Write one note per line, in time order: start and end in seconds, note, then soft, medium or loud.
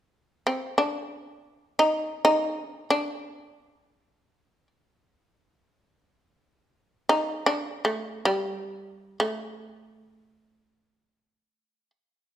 0.47 0.77 C4 soft
0.78 1.78 D4 medium
1.79 2.23 D#4 medium
2.25 2.62 D#4 medium
2.62 2.88 D4 medium
2.90 4.67 D4 medium
7.09 7.44 D#4 medium
7.46 7.83 D4 medium
7.85 8.25 A3 soft
8.25 9.17 G3 medium
9.20 11.90 A3 medium